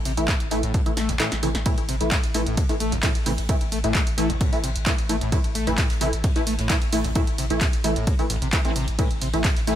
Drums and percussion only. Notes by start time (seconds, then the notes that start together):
0.05 open hi-hat, ride
0.17 closed hi-hat, ride
0.28 kick, snare, clap, closed hi-hat, ride
0.40 closed hi-hat
0.50 open hi-hat, ride
0.63 closed hi-hat
0.74 kick, closed hi-hat, ride
0.86 closed hi-hat
0.97 snare, open hi-hat, ride
1.09 snare, closed hi-hat
1.20 snare, clap, closed hi-hat, ride
1.31 snare, closed hi-hat
1.43 open hi-hat, ride
1.55 snare, closed hi-hat
1.66 kick, closed hi-hat, ride
1.78 closed hi-hat
1.89 open hi-hat, ride
2.00 snare, closed hi-hat
2.11 kick, snare, clap, closed hi-hat, ride
2.23 snare, closed hi-hat
2.34 open hi-hat, ride
2.47 closed hi-hat
2.57 kick, closed hi-hat, ride
2.69 snare, closed hi-hat
2.80 open hi-hat, ride
2.92 snare, closed hi-hat
3.03 kick, snare, clap, closed hi-hat, ride
3.15 closed hi-hat
3.26 snare, open hi-hat
3.38 closed hi-hat, ride
3.48 kick, closed hi-hat, ride
3.61 closed hi-hat
3.72 open hi-hat, ride
3.84 closed hi-hat, ride
3.94 kick, snare, clap, closed hi-hat, ride
4.07 closed hi-hat
4.18 open hi-hat, ride
4.30 closed hi-hat
4.41 kick, closed hi-hat, ride
4.52 open hi-hat, ride
4.63 open hi-hat, ride
4.76 closed hi-hat
4.86 kick, snare, clap, closed hi-hat, ride
4.98 closed hi-hat
5.09 open hi-hat, ride
5.21 closed hi-hat
5.32 kick, closed hi-hat, ride
5.44 closed hi-hat
5.55 open hi-hat, ride
5.67 snare, closed hi-hat
5.78 kick, snare, clap, closed hi-hat, ride
5.90 snare, closed hi-hat
6.01 open hi-hat, ride
6.13 closed hi-hat
6.24 kick, closed hi-hat, ride
6.36 snare, closed hi-hat
6.47 open hi-hat, ride
6.59 snare, closed hi-hat
6.69 kick, snare, clap, closed hi-hat, ride
6.82 closed hi-hat
6.92 snare, open hi-hat
7.04 closed hi-hat, ride
7.15 kick, closed hi-hat, ride
7.27 closed hi-hat
7.38 open hi-hat, ride
7.50 closed hi-hat, ride
7.61 kick, snare, clap, closed hi-hat, ride
7.73 closed hi-hat
7.84 open hi-hat, ride
7.96 closed hi-hat
8.07 kick, closed hi-hat, ride
8.18 open hi-hat, ride
8.30 open hi-hat, ride
8.42 closed hi-hat
8.53 kick, snare, clap, closed hi-hat, ride
8.65 closed hi-hat
8.76 open hi-hat, ride
8.88 closed hi-hat
8.99 kick, closed hi-hat, ride
9.11 closed hi-hat
9.22 open hi-hat, ride
9.34 snare, closed hi-hat
9.44 kick, snare, clap, closed hi-hat, ride
9.57 snare, closed hi-hat
9.67 open hi-hat, ride